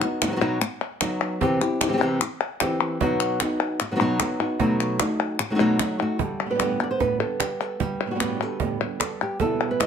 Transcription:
0.01 nylon-string guitar B3 F#4, clap
0.22 nylon-string guitar B3 D#4 F#4, cajon slap, clap
0.27 nylon-string guitar F#3 B3 D#4 F#4
0.32 nylon-string guitar B3 D#4 F#4
0.36 nylon-string guitar F#3 B3 D#4 F#4
0.41 nylon-string guitar B2 F#3 B3 D#4 F#4, cajon slap, clap
0.61 muted nylon-string guitar stroke, cajon slap, clap
0.81 clap
1.00 nylon-string guitar F#3 B3 D#4 F#4, cajon slap, clap
1.21 clap
1.41 nylon-string guitar C3 E3 C4 E4 G4, cajon bass
1.61 nylon-string guitar C4 E4 G4, clap
1.81 nylon-string guitar C4 E4 G4, cajon slap, clap
1.88 nylon-string guitar E3 C4 E4 G4
1.93 nylon-string guitar E3 C4 E4 G4
1.97 nylon-string guitar E3 C4 E4 G4
2.01 nylon-string guitar C3 E3 C4 E4 G4, cajon slap
2.21 muted nylon-string guitar stroke, cajon slap, clap
2.60 nylon-string guitar E3 C4 E4 G4, cajon slap, clap
3.00 nylon-string guitar B2 F#3 B3 D#4 F#4, cajon bass
3.20 clap
3.40 nylon-string guitar B3 D#4 F#4, cajon slap, clap
3.60 clap
3.80 muted nylon-string guitar stroke, cajon slap, clap
3.91 nylon-string guitar F#3 B3 D#4 F#4
3.96 nylon-string guitar F#3 B3 D#4 F#4
4.00 nylon-string guitar B2 F#3 B3 D#4 F#4, clap
4.20 nylon-string guitar F#3 B3 D#4 F#4, cajon slap, clap
4.40 nylon-string guitar B3 D#4 F#4
4.59 nylon-string guitar B2 F#3 A3 D#4 F#4, cajon bass
4.80 clap
4.99 nylon-string guitar A3 D#4 F#4, cajon slap, clap
5.20 clap
5.39 muted nylon-string guitar stroke, cajon slap, clap
5.50 nylon-string guitar F#3 A3 D#4 F#4
5.55 nylon-string guitar F#3 A3 D#4 F#4
5.60 nylon-string guitar B2 F#3 A3 D#4 F#4
5.79 nylon-string guitar F#3 A3 D#4 F#4, cajon slap, clap
5.99 nylon-string guitar A3 D#4 F#4, clap
6.19 nylon-string guitar G3 A4, muted nylon-string guitar stroke, cajon bass
6.45 nylon-string guitar A2 D3 G3 B3 G4
6.50 nylon-string guitar A2 D3 G3 B3 G4 B4
6.54 nylon-string guitar A2 D3 G3 B3 G4
6.58 nylon-string guitar G2 A2 D3 G3 B3 G4 D5, cajon slap, clap
6.79 nylon-string guitar D3 G3 B3 G4 C5
6.83 nylon-string guitar D5
6.91 nylon-string guitar C5
6.99 nylon-string guitar G2 A2 D3 G3 B3 G4 B4, cajon bass, cajon slap
7.20 nylon-string guitar D3 G3 B3 G4 A4
7.39 nylon-string guitar G4, muted nylon-string guitar stroke, cajon slap, clap
7.61 nylon-string guitar A4, clap
7.80 nylon-string guitar G3 G4, muted nylon-string guitar stroke, cajon bass
8.06 nylon-string guitar A2 D3 G3 B3 G4
8.10 nylon-string guitar A2 D3 G3 B3 F#4 G4
8.15 nylon-string guitar A2 D3 G3 B3 G4
8.19 nylon-string guitar G2 A2 D3 G3 B3 G4, cajon slap, clap
8.40 nylon-string guitar D3 G3 B3 G4 A4
8.60 nylon-string guitar G2 A2 D3 G3 B3 G4, cajon bass
8.80 nylon-string guitar D3 G3 B3
9.00 nylon-string guitar A4 D5, muted nylon-string guitar stroke, cajon slap, clap
9.21 nylon-string guitar G4, clap
9.40 nylon-string guitar E2 B2 E3 G3 B3 E4 A4, cajon bass
9.71 nylon-string guitar B4
9.80 nylon-string guitar G3 B3 E4 D#5, cajon slap, clap

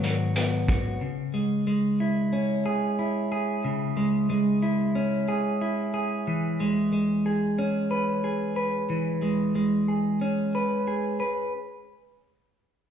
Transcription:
Already playing: fingered electric bass G#2, clean electric guitar D#3 F#3 B3
0.03 clean electric guitar F#4, closed hi-hat
0.36 clean electric guitar B3, closed hi-hat
0.68 clean electric guitar F#4, kick, closed hi-hat
1.01 clean electric guitar C#3
1.34 clean electric guitar G#3
1.67 clean electric guitar G#3
2.00 clean electric guitar E4
2.33 clean electric guitar C#4
2.66 clean electric guitar G#4
2.99 clean electric guitar E4
3.32 clean electric guitar G#4
3.65 clean electric guitar C#3
3.97 clean electric guitar G#3
4.30 clean electric guitar G#3
4.63 clean electric guitar E4
4.95 clean electric guitar C#4
5.28 clean electric guitar G#4
5.61 clean electric guitar E4
5.94 clean electric guitar G#4
6.27 clean electric guitar E3
6.60 clean electric guitar G#3
6.93 clean electric guitar G#3
7.26 clean electric guitar G#4
7.58 clean electric guitar C#4
7.91 clean electric guitar B4
8.24 clean electric guitar G#4
8.56 clean electric guitar B4
8.90 clean electric guitar E3
9.22 clean electric guitar G#3
9.55 clean electric guitar G#3
9.88 clean electric guitar G#4
10.21 clean electric guitar C#4
10.55 clean electric guitar B4
10.88 clean electric guitar G#4
11.20 clean electric guitar B4

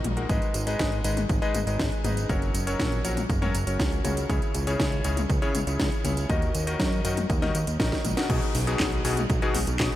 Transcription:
Already playing: electric grand piano D#3 D#4 F#4 A#4 D#5
0.04 analog synth bass A#1, closed hi-hat, high tom
0.17 electric grand piano G#3 D#4 F#4 A#4 F#5, closed hi-hat
0.29 analog synth bass G#1, electric grand piano G#3 D#4 G#4 B4 D#5, kick, closed hi-hat, tambourine
0.42 closed hi-hat, tambourine
0.54 analog synth bass G#1, closed hi-hat, tambourine
0.67 electric grand piano G#3 D#4 G#4 B4 D#5, closed hi-hat, tambourine
0.79 analog synth bass G#1, kick, snare, closed hi-hat, tambourine
0.92 closed hi-hat, tambourine
1.04 analog synth bass G#1, electric grand piano G#3 D#4 G#4 B4 D#5, closed hi-hat, tambourine
1.17 closed hi-hat, high tom, tambourine
1.29 analog synth bass G#1, kick, closed hi-hat, tambourine
1.42 electric grand piano G#3 D#4 G#4 B4 D#5, closed hi-hat, tambourine
1.54 analog synth bass G#1, closed hi-hat, high tom, tambourine
1.67 analog synth bass G#1, electric grand piano G#3 D#4 G#4 B4 D#5, closed hi-hat, tambourine
1.79 analog synth bass G#1, kick, snare, closed hi-hat, tambourine
1.92 closed hi-hat, tambourine
2.04 analog synth bass G#1, electric grand piano D#4 G#4 B4 D#5, closed hi-hat, high tom, tambourine
2.17 closed hi-hat, tambourine
2.29 analog synth bass F#1, electric grand piano F#3 C#4 F#4 A#4 C#5, kick, closed hi-hat, tambourine
2.42 closed hi-hat, tambourine
2.54 analog synth bass F#1, closed hi-hat, tambourine
2.67 electric grand piano F#3 C#4 F#4 A#4 C#5, closed hi-hat, tambourine
2.80 analog synth bass A#1, kick, snare, closed hi-hat, tambourine
2.92 closed hi-hat, tambourine
3.04 analog synth bass A#1, electric grand piano F#3 C#4 F#4 A#4 C#5, closed hi-hat, tambourine
3.17 closed hi-hat, high tom, tambourine
3.29 analog synth bass F#1, kick, closed hi-hat, tambourine
3.42 electric grand piano F#3 C#4 F#4 A#4 C#5, closed hi-hat, high tom, tambourine
3.54 analog synth bass F#1, closed hi-hat, tambourine
3.67 analog synth bass F#1, electric grand piano F#3 C#4 F#4 A#4 C#5, closed hi-hat, tambourine
3.80 analog synth bass C#2, kick, snare, closed hi-hat, tambourine
3.92 closed hi-hat, tambourine
4.04 analog synth bass C#2, electric grand piano C#3 C#4 F#4 A#4 C#5, closed hi-hat, high tom, tambourine
4.17 closed hi-hat, tambourine
4.29 analog synth bass C#2, electric grand piano C#3 C#4 E4 G#4 C#5, kick, closed hi-hat, tambourine
4.42 closed hi-hat, tambourine
4.55 analog synth bass C#2, closed hi-hat, tambourine
4.67 electric grand piano C#3 C#4 E4 G#4 C#5, closed hi-hat, tambourine
4.80 analog synth bass C#2, kick, snare, closed hi-hat, tambourine
4.92 closed hi-hat, tambourine
5.04 analog synth bass C#2, electric grand piano C#3 C#4 E4 G#4 C#5, closed hi-hat, tambourine
5.17 closed hi-hat, high tom, tambourine
5.30 analog synth bass C#2, kick, closed hi-hat, tambourine
5.42 electric grand piano C#3 C#4 E4 G#4 C#5, closed hi-hat, tambourine
5.55 analog synth bass C#2, closed hi-hat, high tom, tambourine
5.67 analog synth bass C#2, electric grand piano C#3 C#4 E4 G#4 C#5, closed hi-hat, tambourine
5.80 analog synth bass C#2, kick, snare, closed hi-hat, tambourine
5.92 closed hi-hat, tambourine
6.04 analog synth bass C#2, electric grand piano C#4 E4 G#4 C#5, closed hi-hat, high tom, tambourine
6.17 closed hi-hat, tambourine
6.30 analog synth bass D#2, electric grand piano D#3 D#4 F#4 A#4 D#5, kick, closed hi-hat, tambourine
6.42 closed hi-hat, tambourine
6.55 analog synth bass D#2, closed hi-hat, tambourine
6.67 electric grand piano D#3 D#4 F#4 A#4 D#5, closed hi-hat, tambourine
6.80 analog synth bass F#2, kick, snare, closed hi-hat, tambourine
6.92 closed hi-hat, tambourine
7.05 analog synth bass F#2, electric grand piano D#3 D#4 F#4 A#4 D#5, closed hi-hat, tambourine
7.17 closed hi-hat, high tom, tambourine
7.30 analog synth bass D#2, kick, closed hi-hat, tambourine
7.42 electric grand piano D#3 D#4 F#4 A#4 D#5, snare, closed hi-hat, high tom, tambourine
7.55 analog synth bass D#2, closed hi-hat, tambourine
7.67 analog synth bass D#2, closed hi-hat, tambourine
7.80 analog synth bass A#1, electric grand piano D#3 D#4 F#4 A#4 D#5, kick, snare, closed hi-hat, tambourine
7.92 kick, snare, closed hi-hat, tambourine
8.05 analog synth bass A#1, closed hi-hat, high tom, tambourine
8.17 electric grand piano B2 D#4 F#4 A#4 F#5, snare, closed hi-hat, tambourine
8.30 analog synth bass B1, electric grand piano B2 B3 D#4 F#4 G#4, kick, closed hi-hat, crash, tambourine
8.42 closed hi-hat, tambourine
8.55 analog synth bass B1, open hi-hat, tambourine
8.67 electric grand piano B2 B3 D#4 F#4 G#4, closed hi-hat, tambourine
8.80 analog synth bass B1, kick, snare, clap, closed hi-hat, tambourine
8.92 closed hi-hat, tambourine
9.05 analog synth bass B1, electric grand piano B2 B3 D#4 F#4 G#4, open hi-hat, tambourine
9.17 closed hi-hat, high tom, tambourine
9.30 analog synth bass B1, kick, closed hi-hat, tambourine
9.42 electric grand piano B2 B3 D#4 F#4 G#4, closed hi-hat, tambourine
9.54 analog synth bass B1, open hi-hat, high tom, tambourine
9.67 analog synth bass B1, closed hi-hat, tambourine
9.80 analog synth bass B1, electric grand piano B2 B3 D#4 F#4 G#4, kick, snare, clap, closed hi-hat, tambourine
9.92 closed hi-hat, tambourine

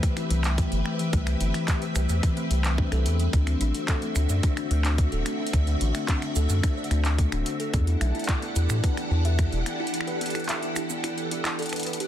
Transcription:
Already playing: string machine C4 G4 B4 E5
0.03 kick, closed hi-hat
0.17 kalimba E4, finger snap, closed hi-hat
0.30 analog synth bass C2, kalimba E3, closed hi-hat
0.44 kalimba A3, clap, closed hi-hat
0.58 kick, closed hi-hat
0.72 analog synth bass G1, kalimba A3, closed hi-hat
0.86 kalimba A3, finger snap
0.99 kalimba E3, closed hi-hat
1.13 analog synth bass C2, kalimba A3, kick, closed hi-hat
1.27 finger snap, closed hi-hat
1.41 analog synth bass G1, kalimba E4, closed hi-hat
1.54 kalimba E3, finger snap, closed hi-hat
1.68 kick, clap, closed hi-hat
1.82 closed hi-hat
1.96 analog synth bass C2, kalimba A3, finger snap, closed hi-hat, shaker
2.09 analog synth bass E2, kalimba A3, closed hi-hat, shaker
2.23 kalimba E3, finger snap, kick, closed hi-hat
2.37 kalimba A3, closed hi-hat
2.51 analog synth bass C2, closed hi-hat
2.64 kalimba C4, finger snap, clap, closed hi-hat
2.78 kalimba D4, kick
2.92 analog synth bass C2, kalimba A4, finger snap, closed hi-hat
3.06 analog synth bass E2, closed hi-hat
3.19 kalimba G3, closed hi-hat
3.33 analog synth bass D2, string machine D3 F#4 E5, kalimba D4, kick, closed hi-hat
3.47 kalimba A3, finger snap, closed hi-hat
3.61 analog synth bass A1, kalimba D4, closed hi-hat
3.74 closed hi-hat
3.88 kalimba A4, finger snap, kick, clap, closed hi-hat
4.02 kalimba A3, closed hi-hat
4.16 analog synth bass D2, kalimba D4, finger snap, closed hi-hat, shaker
4.29 analog synth bass F#2, kalimba D5, closed hi-hat, shaker
4.43 kalimba D4, kick, closed hi-hat
4.57 kalimba D4, finger snap, closed hi-hat
4.71 analog synth bass D2, kalimba A3, closed hi-hat
4.85 kalimba D4, finger snap, clap, closed hi-hat
4.98 kick, closed hi-hat
5.12 analog synth bass D1, kalimba A4, closed hi-hat
5.26 kalimba A3, finger snap, closed hi-hat
5.40 kalimba D4
5.47 closed hi-hat
5.53 analog synth bass D2, kalimba D5, finger snap, kick, closed hi-hat
5.67 kalimba D4, closed hi-hat
5.81 analog synth bass A1, kalimba D4, closed hi-hat
5.95 kalimba A3, finger snap, closed hi-hat
6.08 kick, clap, closed hi-hat
6.22 finger snap, closed hi-hat
6.36 analog synth bass D2, kalimba A4, closed hi-hat, shaker
6.50 analog synth bass F#2, kalimba A3, closed hi-hat, shaker
6.63 kalimba D4, finger snap, kick, closed hi-hat
6.77 kalimba D5
6.84 closed hi-hat
6.91 analog synth bass D2, kalimba D4, finger snap, closed hi-hat
7.05 kalimba D4, clap, closed hi-hat
7.18 kalimba A3, kick, closed hi-hat
7.32 analog synth bass D1, kalimba D4, finger snap, closed hi-hat
7.46 closed hi-hat
7.60 kalimba A4, closed hi-hat
7.74 analog synth bass E2, string machine E3 D4 G4 A4 F#5, kalimba B3, kick, closed hi-hat
7.87 kalimba E4, closed hi-hat
8.01 analog synth bass B1, kalimba E5, finger snap, closed hi-hat
8.15 kalimba E4, closed hi-hat
8.19 closed hi-hat
8.24 closed hi-hat
8.29 finger snap, kick, clap, closed hi-hat
8.42 kalimba B3, closed hi-hat
8.56 analog synth bass E2, kalimba E4, closed hi-hat, shaker
8.70 analog synth bass A2, finger snap, shaker
8.84 kalimba B4, kick, closed hi-hat
8.97 kalimba B3, finger snap, closed hi-hat
9.11 analog synth bass E2, kalimba E4
9.25 kalimba E5, closed hi-hat
9.39 kalimba E4, finger snap, kick, closed hi-hat
9.52 analog synth bass E1, kalimba E4, closed hi-hat
9.66 kalimba B3, finger snap, closed hi-hat
9.80 kalimba E4
9.87 closed hi-hat
9.94 closed hi-hat
10.01 finger snap
10.07 kalimba B4, closed hi-hat
10.21 kalimba B3, closed hi-hat
10.26 closed hi-hat
10.30 closed hi-hat
10.35 kalimba E4, finger snap, closed hi-hat
10.40 closed hi-hat
10.44 closed hi-hat
10.49 kalimba E5, clap, closed hi-hat
10.63 kalimba E4, closed hi-hat
10.76 kalimba E4, finger snap, closed hi-hat, shaker
10.90 kalimba B3, shaker
11.04 kalimba E4, finger snap, closed hi-hat
11.18 closed hi-hat
11.31 kalimba E4, closed hi-hat
11.45 kalimba E4, finger snap, clap, closed hi-hat
11.59 kalimba A4, closed hi-hat
11.62 closed hi-hat
11.66 closed hi-hat
11.69 kalimba B4, finger snap, closed hi-hat
11.73 closed hi-hat
11.76 closed hi-hat
11.80 closed hi-hat
11.83 closed hi-hat
11.86 kalimba B4, closed hi-hat
11.93 closed hi-hat
12.00 kalimba G4, closed hi-hat

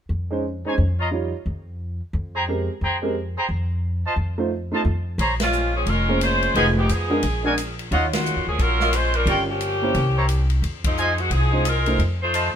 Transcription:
0.09 upright bass F2
0.30 upright piano G#3 C#4 D#4 C5
0.65 upright piano G#3 C#4 D#4 C5, trumpet section D#4 C5 C#5 G#5
0.78 upright bass F2
0.99 trumpet section F4 C#5 D#5 A#5
1.11 upright piano G3 D#4 F4 C#5
1.46 upright bass F2
2.13 upright bass F2
2.34 trumpet section G#4 C5 G5 A#5
2.48 upright piano G#3 C4 G4 A#4
2.81 upright bass F2, trumpet section G#4 C5 G5 A#5
3.02 upright piano G#3 C4 G4 A#4
3.37 trumpet section G#4 C5 G5 A#5
3.49 upright bass F2
4.06 trumpet section F4 C5 D#5 A5
4.16 upright bass F2
4.38 upright piano A3 D#4 F4 C5
4.72 upright piano A3 D#4 F4 A4, trumpet section F4 C5 D#5 A5
4.85 upright bass F2
5.18 upright bass A#1, trumpet section G#4 C5 C#5 A#5, ride
5.40 saxophone section G#3 C4 C#4 F4, snare, ride
5.53 hi-hat pedal
5.76 saxophone section F3 C4 C#4 G#4
5.86 upright bass F1, saxophone section G#3 C#4 F4 A#4, ride
6.08 upright piano A#3 C#4 G#4 C5
6.21 saxophone section G#3 C#4 F4 C5, hi-hat pedal, ride
6.43 ride
6.54 upright bass F1, saxophone section F3 B3 D#4 G#4, upright piano G#3 D#4 F4 B4, trumpet section F4 B4 D#5 G#5, ride
6.79 saxophone section D#3 G#3 B3 G4
6.89 upright bass F2, saxophone section F3 B3 D#4 G#4, hi-hat pedal, ride
7.10 upright piano G#3 D4 F#4 A#4
7.23 upright bass A#1, ride
7.43 upright piano G#3 D4 F#4 A#4, trumpet section F#4 A#4 D5 G#5
7.58 hi-hat pedal, ride
7.79 ride
7.91 upright bass D#2, upright piano F#3 D#4 C#5 F5, trumpet section F4 C#5 D#5 F#5, ride
8.13 saxophone section C#3 A#3 F4 F#4, snare, ride
8.26 hi-hat pedal
8.36 upright bass F2
8.47 upright bass D2, saxophone section F3 A#3 C#4 G#4
8.59 upright bass A#1, saxophone section F#3 C#4 F4 A#4, ride
8.80 trumpet section F4 C#5 D#5 F5, snare
8.93 saxophone section G#3 C#4 F4 C5, hi-hat pedal, ride
9.14 saxophone section G3 C#4 F4 A#4, ride
9.26 upright bass G1, upright piano G3 C#4 F4 A#4, trumpet section F4 A#4 C#5 G5, ride
9.50 saxophone section F3 A#3 C#4 G4
9.61 hi-hat pedal, ride
9.82 upright piano A#3 C#4 E4 C5
9.94 upright bass C2, ride
10.16 trumpet section E4 C5 C#5 A#5
10.29 hi-hat pedal, ride
10.50 ride
10.62 upright bass F2, ride
10.84 saxophone section F3 G#3 C4 D#4, kick, ride
10.98 trumpet section F4 C5 D#5 G#5, hi-hat pedal
11.18 saxophone section D#3 G#3 C4 F#4, ride
11.30 upright bass C2, saxophone section F3 C4 D#4 G#4, ride
11.52 upright piano G#3 D#4 F4 C5
11.65 saxophone section G#3 D#4 F4 A#4, hi-hat pedal, ride
11.86 upright piano A3 D#4 F4 C5, ride
11.98 upright bass F2, ride
12.22 saxophone section A3 D#4 F4 C5
12.33 trumpet section F4 C5 D#5 A5, hi-hat pedal, ride

